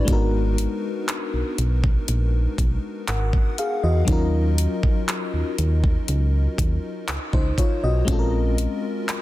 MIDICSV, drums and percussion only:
0, 0, Header, 1, 2, 480
1, 0, Start_track
1, 0, Tempo, 1000000
1, 38, Time_signature, 4, 2, 24, 8
1, 4425, End_track
2, 0, Start_track
2, 0, Title_t, "Drums"
2, 38, Note_on_c, 9, 36, 96
2, 38, Note_on_c, 9, 42, 59
2, 86, Note_off_c, 9, 36, 0
2, 86, Note_off_c, 9, 42, 0
2, 280, Note_on_c, 9, 42, 69
2, 328, Note_off_c, 9, 42, 0
2, 522, Note_on_c, 9, 39, 107
2, 522, Note_on_c, 9, 42, 72
2, 570, Note_off_c, 9, 39, 0
2, 570, Note_off_c, 9, 42, 0
2, 760, Note_on_c, 9, 42, 66
2, 808, Note_off_c, 9, 42, 0
2, 882, Note_on_c, 9, 36, 94
2, 930, Note_off_c, 9, 36, 0
2, 999, Note_on_c, 9, 42, 71
2, 1047, Note_off_c, 9, 42, 0
2, 1240, Note_on_c, 9, 36, 83
2, 1242, Note_on_c, 9, 42, 67
2, 1288, Note_off_c, 9, 36, 0
2, 1290, Note_off_c, 9, 42, 0
2, 1478, Note_on_c, 9, 42, 70
2, 1480, Note_on_c, 9, 39, 112
2, 1526, Note_off_c, 9, 42, 0
2, 1528, Note_off_c, 9, 39, 0
2, 1599, Note_on_c, 9, 36, 90
2, 1647, Note_off_c, 9, 36, 0
2, 1720, Note_on_c, 9, 42, 54
2, 1768, Note_off_c, 9, 42, 0
2, 1957, Note_on_c, 9, 42, 58
2, 1958, Note_on_c, 9, 36, 100
2, 2005, Note_off_c, 9, 42, 0
2, 2006, Note_off_c, 9, 36, 0
2, 2199, Note_on_c, 9, 42, 68
2, 2247, Note_off_c, 9, 42, 0
2, 2320, Note_on_c, 9, 36, 90
2, 2368, Note_off_c, 9, 36, 0
2, 2442, Note_on_c, 9, 39, 111
2, 2442, Note_on_c, 9, 42, 74
2, 2490, Note_off_c, 9, 39, 0
2, 2490, Note_off_c, 9, 42, 0
2, 2681, Note_on_c, 9, 42, 65
2, 2729, Note_off_c, 9, 42, 0
2, 2802, Note_on_c, 9, 36, 89
2, 2850, Note_off_c, 9, 36, 0
2, 2919, Note_on_c, 9, 42, 72
2, 2967, Note_off_c, 9, 42, 0
2, 3160, Note_on_c, 9, 36, 81
2, 3163, Note_on_c, 9, 42, 70
2, 3208, Note_off_c, 9, 36, 0
2, 3211, Note_off_c, 9, 42, 0
2, 3399, Note_on_c, 9, 42, 72
2, 3401, Note_on_c, 9, 39, 106
2, 3447, Note_off_c, 9, 42, 0
2, 3449, Note_off_c, 9, 39, 0
2, 3520, Note_on_c, 9, 36, 91
2, 3568, Note_off_c, 9, 36, 0
2, 3637, Note_on_c, 9, 36, 89
2, 3640, Note_on_c, 9, 42, 58
2, 3685, Note_off_c, 9, 36, 0
2, 3688, Note_off_c, 9, 42, 0
2, 3878, Note_on_c, 9, 36, 100
2, 3878, Note_on_c, 9, 42, 59
2, 3926, Note_off_c, 9, 36, 0
2, 3926, Note_off_c, 9, 42, 0
2, 4120, Note_on_c, 9, 42, 72
2, 4168, Note_off_c, 9, 42, 0
2, 4362, Note_on_c, 9, 39, 111
2, 4362, Note_on_c, 9, 42, 70
2, 4410, Note_off_c, 9, 39, 0
2, 4410, Note_off_c, 9, 42, 0
2, 4425, End_track
0, 0, End_of_file